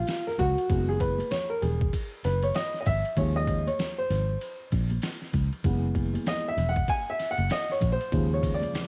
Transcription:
0.00 0.25 F4 medium
0.07 snare loud
0.07 hi-hat pedal medium
0.07 ride medium
0.07 maracas medium
0.27 0.39 A#4 medium
0.27 snare soft
0.27 maracas soft
0.38 0.55 C#2 medium
0.38 0.85 F#4 loud
0.38 kick medium
0.38 ride medium
0.38 low conga medium
0.38 maracas soft
0.57 ride soft
0.57 maracas soft
0.69 1.21 F#1 loud
0.69 1.13 E3 soft
0.69 1.14 G#3 soft
0.69 1.14 B3 medium
0.69 kick loud
0.69 ride medium
0.69 maracas medium
0.89 1.00 G#4 medium
0.89 maracas soft
1.00 1.29 B4 medium
1.00 kick medium
1.00 ride medium
1.00 maracas medium
1.18 ride medium
1.18 high conga medium
1.18 maracas medium
1.31 1.51 C#5 medium
1.31 snare loud
1.31 hi-hat pedal soft
1.31 ride medium
1.31 low conga medium
1.31 maracas medium
1.50 1.61 A#4 medium
1.50 maracas soft
1.62 1.88 E1 medium
1.62 1.91 G#4 medium
1.62 ride medium
1.62 low conga medium
1.62 maracas soft
1.81 kick loud
1.81 maracas soft
1.93 kick medium
1.93 ride medium
1.93 maracas medium
2.12 maracas soft
2.24 2.50 F#1 medium
2.24 2.44 B4 medium
2.24 snare soft
2.24 ride medium
2.24 maracas soft
2.42 2.55 C#5 medium
2.42 ride soft
2.42 high conga medium
2.42 maracas soft
2.54 2.79 D#5 medium
2.54 snare loud
2.54 hi-hat pedal medium
2.54 ride medium
2.54 maracas medium
2.74 snare soft
2.74 maracas soft
2.81 2.86 D#5 medium
2.86 3.02 G#1 medium
2.86 3.15 E5 loud
2.86 kick medium
2.86 ride medium
2.86 low conga medium
2.86 maracas soft
3.05 ride soft
3.05 maracas soft
3.17 3.68 D#2 loud
3.17 3.61 F3 soft
3.17 3.61 G#3 soft
3.17 3.61 C#4 medium
3.17 3.35 C#5 medium
3.17 kick loud
3.17 ride medium
3.17 maracas medium
3.36 3.68 D#5 medium
3.36 maracas soft
3.48 kick medium
3.48 ride medium
3.48 maracas soft
3.67 3.96 C#5 medium
3.67 ride soft
3.67 high conga medium
3.67 maracas soft
3.79 snare loud
3.79 hi-hat pedal soft
3.79 ride medium
3.79 low conga medium
3.79 maracas medium
3.98 4.56 C5 medium
3.98 maracas soft
4.10 4.36 G#1 medium
4.10 snare soft
4.10 ride medium
4.10 low conga medium
4.10 maracas soft
4.29 maracas soft
4.41 ride medium
4.41 maracas medium
4.59 maracas soft
4.72 4.98 A#1 loud
4.72 kick medium
4.72 snare soft
4.72 ride medium
4.72 maracas medium
4.90 ride soft
4.90 high conga medium
4.90 maracas soft
5.02 snare loud
5.02 hi-hat pedal medium
5.02 ride medium
5.02 maracas medium
5.22 snare soft
5.22 maracas soft
5.33 5.50 C#2 medium
5.33 kick medium
5.33 ride medium
5.33 low conga medium
5.33 maracas soft
5.53 ride soft
5.53 maracas soft
5.64 6.16 F#1 loud
5.64 6.53 E3 medium
5.64 6.53 G#3 soft
5.64 6.54 B3 medium
5.64 kick loud
5.64 ride medium
5.64 maracas medium
5.84 maracas soft
5.95 kick medium
5.95 ride medium
5.95 high conga medium
5.95 maracas soft
6.14 ride soft
6.14 high conga medium
6.14 maracas soft
6.26 6.48 D#5 medium
6.26 snare loud
6.26 hi-hat pedal soft
6.26 ride medium
6.26 low conga medium
6.26 maracas medium
6.46 6.69 E5 loud
6.46 maracas soft
6.57 6.83 E1 medium
6.57 ride medium
6.57 low conga medium
6.57 maracas soft
6.69 6.87 F#5 medium
6.76 kick loud
6.76 ride soft
6.76 maracas soft
6.88 7.10 G#5 loud
6.88 kick loud
6.88 ride medium
6.88 high conga soft
6.88 maracas medium
7.07 7.29 E5 loud
7.07 maracas soft
7.19 snare soft
7.19 ride medium
7.19 maracas soft
7.31 7.51 F#5 loud
7.37 7.48 F#1 medium
7.37 ride soft
7.37 high conga medium
7.37 maracas soft
7.49 7.72 D#5 medium
7.49 snare loud
7.49 hi-hat pedal medium
7.49 ride medium
7.49 maracas medium
7.69 7.90 C#5 medium
7.69 snare soft
7.69 maracas soft
7.81 7.97 A#1 medium
7.81 kick medium
7.81 ride medium
7.81 high conga medium
7.81 low conga medium
7.81 maracas soft
7.92 8.34 C5 medium
8.00 ride soft
8.00 maracas soft
8.12 8.63 D#2 loud
8.12 8.87 C#3 medium
8.12 8.87 F3 medium
8.12 8.87 G#3 soft
8.12 kick loud
8.12 ride medium
8.12 maracas soft
8.31 8.54 C#5 medium
8.31 maracas soft
8.43 kick medium
8.43 ride medium
8.43 maracas medium
8.54 8.87 D5 medium
8.61 ride soft
8.61 high conga medium
8.61 maracas soft
8.74 snare loud
8.74 hi-hat pedal soft
8.74 ride medium
8.74 low conga medium
8.74 maracas medium

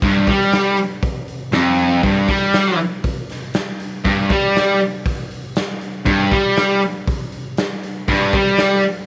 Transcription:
0.02 0.27 G2 loud
0.02 kick loud
0.02 open hi-hat medium
0.27 0.77 G3 medium
0.27 kick loud
0.27 open hi-hat medium
0.41 snare soft
0.53 snare loud
0.53 open hi-hat medium
0.77 open hi-hat medium
1.03 kick loud
1.03 open hi-hat medium
1.28 open hi-hat medium
1.52 2.02 F2 loud
1.52 snare loud
1.52 open hi-hat medium
1.78 open hi-hat soft
2.03 2.28 G2 loud
2.03 kick loud
2.03 open hi-hat medium
2.28 2.78 G3 medium
2.28 kick medium
2.28 open hi-hat medium
2.42 snare soft
2.53 snare loud
2.53 open hi-hat medium
2.79 open hi-hat medium
3.04 kick medium
3.04 open hi-hat medium
3.29 snare soft
3.29 open hi-hat medium
3.54 snare loud
3.54 open hi-hat medium
3.80 open hi-hat medium
4.04 4.29 G2 loud
4.04 kick loud
4.04 open hi-hat medium
4.30 4.80 G3 medium
4.30 kick loud
4.30 open hi-hat medium
4.56 snare loud
4.56 open hi-hat medium
4.81 open hi-hat medium
5.06 kick loud
5.06 open hi-hat medium
5.31 open hi-hat medium
5.56 snare loud
5.56 open hi-hat medium
5.81 open hi-hat medium
6.05 6.30 G2 loud
6.05 kick loud
6.05 open hi-hat medium
6.31 6.81 G3 loud
6.31 kick loud
6.31 open hi-hat soft
6.57 snare loud
6.57 open hi-hat medium
6.82 open hi-hat medium
7.08 kick loud
7.08 open hi-hat medium
7.32 open hi-hat medium
7.57 snare loud
7.57 open hi-hat medium
7.83 open hi-hat medium
8.08 8.33 G2 loud
8.08 kick medium
8.08 open hi-hat medium
8.33 8.83 G3 loud
8.33 kick loud
8.33 open hi-hat medium
8.47 snare soft
8.58 snare loud
8.58 open hi-hat medium
8.83 open hi-hat medium

